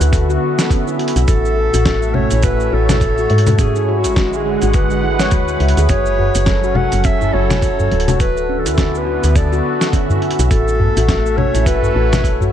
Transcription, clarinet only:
Already playing: B4
1.28 A4
2.15 C#5
2.44 B4
2.73 A4
3.60 G#4
3.98 F#4
4.36 G#4
4.75 B4
5.89 C#5
6.76 F#5
7.05 E5
7.34 C#5
8.20 B4
8.59 A4
8.67 B4
8.74 A4
8.97 B4
9.36 D5
10.50 A4
11.37 C#5
11.67 B4

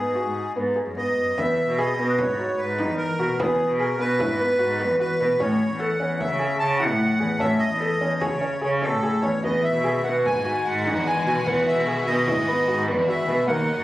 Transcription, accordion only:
Already playing: G#4
0.97 D#5
1.37 E5
1.78 D#5
2.19 C#5
2.58 B4
2.97 A#4
3.39 G#4
3.79 A#4
4.00 B4
5.00 B4
5.39 C#5
5.79 F#5
6.20 E5
6.59 A5
6.78 F#5
7.39 E5
7.59 D#5
8.20 C#5
8.61 C#5
8.81 A4
9.21 C#5
9.43 D#5
9.64 E5
10.04 F#5
10.25 G#5
10.65 F#5
11.06 G#5
11.25 G#5
11.45 F#5
11.67 E5
12.07 D#5
13.08 E5
13.47 F#5

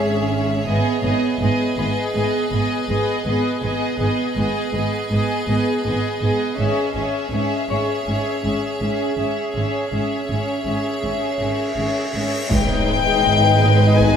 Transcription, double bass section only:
Already playing: G#1
0.66 G#1
1.04 G#1
1.40 G#1
1.78 G#1
2.14 G#1
2.52 G#1
2.89 G#1
3.26 G#1
3.63 G#1
4.00 G#1
4.36 G#1
4.74 G#1
5.12 G#1
5.49 G#1
5.86 G#1
6.22 G#1
6.60 G#1
6.96 G#1
7.32 G#1
7.70 G#1
8.08 G#1
8.44 G#1
8.81 G#1
9.18 G#1
9.55 G#1
9.92 G#1
10.30 G#1
10.66 G#1
11.04 G#1
11.41 G#1
11.76 G#1
12.15 G#1
12.52 G#1

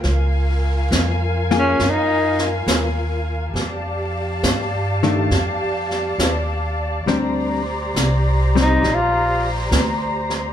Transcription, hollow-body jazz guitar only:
1.51 A#3 F4 G#4
5.03 D#3 A3 D4
7.07 G3 C4 D4
8.55 G3 C4

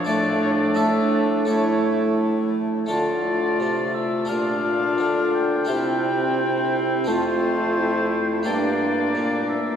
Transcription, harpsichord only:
0.04 A2 D4 E4 A4
0.74 D4 E4 A4
1.45 A3 E4 A4
2.86 A3 F4 A4
2.91 D3
3.60 C3
4.25 A#2 D4 F4 A#4
4.98 D3
5.65 C3 C4 E4 G4
7.04 F3 C4 A4
7.08 F2
8.43 G2 A#3 D4 G4
9.15 A#2

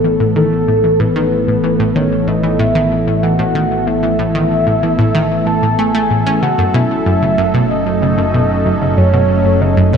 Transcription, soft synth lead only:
Already playing: A4
0.36 A4
1.00 B4
1.96 C#5
2.27 D#5
2.59 E5
3.23 F#5
3.87 E5
5.46 A5
5.79 G#5
6.42 F#5
6.74 E5
7.70 D#5
8.97 C#5
9.61 D#5
9.93 C#5

